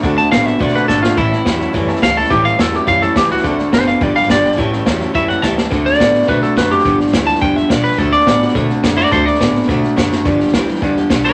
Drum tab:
HH |----p-------p---|----p-------p---|----p-------p---|----p-------p---|
SD |o-o-o-o-ooo-o-o-|o-o-o-o-o-ooo-oo|o-o-o-o-o-o-o-oo|o-o-o-o-o-ooo-oo|
BD |o---o---o---o---|o---o---o---o---|o---o---o---o---|o---o---o---o---|

HH |----p-------p---|----p-------p---|----p-------p---|----p-------p---|
SD |o-o-o-o-o-o-o-o-|o-ooo-ooo-o-o-oo|o-ooo-ooo-o-o-oo|o-ooo-ooo-o-o-oo|
BD |o---o---o---o---|o---o---o---o---|o---o---o---o---|o---o---o---o---|

HH |----p-------p---|----p-------p---|
SD |o-ooo-ooo-o-o-o-|o-ooo-ooo-o-o-o-|
BD |o---o---o---o---|o---o---o---o---|